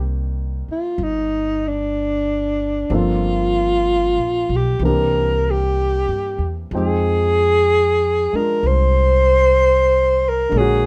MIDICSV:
0, 0, Header, 1, 5, 480
1, 0, Start_track
1, 0, Key_signature, -3, "minor"
1, 0, Tempo, 955414
1, 1455, Time_signature, 4, 2, 24, 8
1, 5457, End_track
2, 0, Start_track
2, 0, Title_t, "Alto saxophone"
2, 0, Program_c, 0, 65
2, 362, Note_on_c, 0, 65, 73
2, 519, Note_on_c, 0, 63, 80
2, 527, Note_off_c, 0, 65, 0
2, 843, Note_on_c, 0, 62, 79
2, 851, Note_off_c, 0, 63, 0
2, 1479, Note_on_c, 0, 65, 91
2, 1487, Note_off_c, 0, 62, 0
2, 2291, Note_on_c, 0, 67, 88
2, 2299, Note_off_c, 0, 65, 0
2, 2428, Note_off_c, 0, 67, 0
2, 2438, Note_on_c, 0, 70, 90
2, 2768, Note_on_c, 0, 67, 90
2, 2776, Note_off_c, 0, 70, 0
2, 3302, Note_off_c, 0, 67, 0
2, 3404, Note_on_c, 0, 68, 104
2, 4200, Note_on_c, 0, 70, 90
2, 4208, Note_off_c, 0, 68, 0
2, 4356, Note_on_c, 0, 72, 108
2, 4363, Note_off_c, 0, 70, 0
2, 5170, Note_on_c, 0, 70, 94
2, 5177, Note_off_c, 0, 72, 0
2, 5313, Note_on_c, 0, 68, 84
2, 5320, Note_off_c, 0, 70, 0
2, 5457, Note_off_c, 0, 68, 0
2, 5457, End_track
3, 0, Start_track
3, 0, Title_t, "Grand piano"
3, 0, Program_c, 1, 0
3, 0, Control_c, 1, 64, 127
3, 0, Note_on_c, 1, 51, 53
3, 0, Note_on_c, 1, 58, 47
3, 0, Note_on_c, 1, 60, 49
3, 0, Note_on_c, 1, 67, 56
3, 0, Note_on_c, 1, 74, 47
3, 1451, Note_off_c, 1, 60, 0
3, 1454, Note_off_c, 1, 58, 0
3, 1455, Note_off_c, 1, 51, 0
3, 1457, Note_on_c, 1, 53, 51
3, 1458, Note_on_c, 1, 60, 44
3, 1462, Note_off_c, 1, 74, 0
3, 1462, Control_c, 1, 64, 0
3, 1462, Note_on_c, 1, 58, 48
3, 1466, Note_on_c, 1, 62, 44
3, 1467, Note_off_c, 1, 67, 0
3, 1467, Note_on_c, 1, 69, 54
3, 1540, Control_c, 1, 64, 127
3, 2416, Note_off_c, 1, 53, 0
3, 2417, Note_off_c, 1, 60, 0
3, 2419, Note_off_c, 1, 58, 0
3, 2421, Note_off_c, 1, 62, 0
3, 2421, Note_off_c, 1, 69, 0
3, 2421, Control_c, 1, 64, 0
3, 2421, Note_on_c, 1, 52, 45
3, 2427, Note_on_c, 1, 58, 41
3, 2428, Note_on_c, 1, 60, 39
3, 2437, Note_on_c, 1, 62, 41
3, 2446, Note_on_c, 1, 67, 52
3, 2514, Control_c, 1, 64, 127
3, 3378, Note_off_c, 1, 52, 0
3, 3381, Note_off_c, 1, 58, 0
3, 3381, Note_off_c, 1, 60, 0
3, 3382, Control_c, 1, 64, 0
3, 3383, Note_on_c, 1, 53, 49
3, 3386, Note_off_c, 1, 62, 0
3, 3388, Note_on_c, 1, 56, 45
3, 3389, Note_on_c, 1, 63, 48
3, 3390, Note_off_c, 1, 67, 0
3, 3391, Note_on_c, 1, 60, 46
3, 3391, Note_on_c, 1, 79, 55
3, 3481, Control_c, 1, 64, 127
3, 4176, Note_off_c, 1, 56, 0
3, 4184, Note_on_c, 1, 56, 41
3, 4195, Note_on_c, 1, 62, 39
3, 4201, Note_on_c, 1, 65, 43
3, 5272, Note_on_c, 1, 50, 48
3, 5274, Note_off_c, 1, 56, 0
3, 5281, Note_on_c, 1, 56, 44
3, 5295, Note_on_c, 1, 58, 44
3, 5297, Note_off_c, 1, 53, 0
3, 5298, Note_off_c, 1, 62, 0
3, 5300, Note_off_c, 1, 63, 0
3, 5300, Control_c, 1, 64, 0
3, 5301, Note_off_c, 1, 60, 0
3, 5301, Note_off_c, 1, 65, 0
3, 5301, Note_off_c, 1, 79, 0
3, 5307, Note_on_c, 1, 73, 43
3, 5327, Note_on_c, 1, 66, 55
3, 5388, Control_c, 1, 64, 127
3, 5457, Note_off_c, 1, 50, 0
3, 5457, Note_off_c, 1, 56, 0
3, 5457, Note_off_c, 1, 58, 0
3, 5457, Note_off_c, 1, 66, 0
3, 5457, Note_off_c, 1, 73, 0
3, 5457, End_track
4, 0, Start_track
4, 0, Title_t, "Upright bass"
4, 0, Program_c, 2, 32
4, 0, Note_on_c, 2, 36, 73
4, 324, Note_off_c, 2, 36, 0
4, 493, Note_on_c, 2, 31, 76
4, 1434, Note_off_c, 2, 31, 0
4, 1456, Note_on_c, 2, 31, 79
4, 2076, Note_off_c, 2, 31, 0
4, 2092, Note_on_c, 2, 34, 52
4, 2242, Note_off_c, 2, 34, 0
4, 2257, Note_on_c, 2, 35, 62
4, 2405, Note_off_c, 2, 35, 0
4, 2408, Note_on_c, 2, 36, 77
4, 3032, Note_off_c, 2, 36, 0
4, 3056, Note_on_c, 2, 43, 52
4, 3204, Note_off_c, 2, 43, 0
4, 3207, Note_on_c, 2, 40, 60
4, 3360, Note_off_c, 2, 40, 0
4, 3371, Note_on_c, 2, 41, 79
4, 4163, Note_off_c, 2, 41, 0
4, 4336, Note_on_c, 2, 36, 74
4, 5274, Note_off_c, 2, 36, 0
4, 5284, Note_on_c, 2, 34, 76
4, 5457, Note_off_c, 2, 34, 0
4, 5457, End_track
5, 0, Start_track
5, 0, Title_t, "Muted upright bass strokes"
5, 343, Note_on_c, 9, 29, 35
5, 393, Note_off_c, 9, 29, 0
5, 4185, Note_on_c, 9, 29, 36
5, 4235, Note_off_c, 9, 29, 0
5, 5457, End_track
0, 0, End_of_file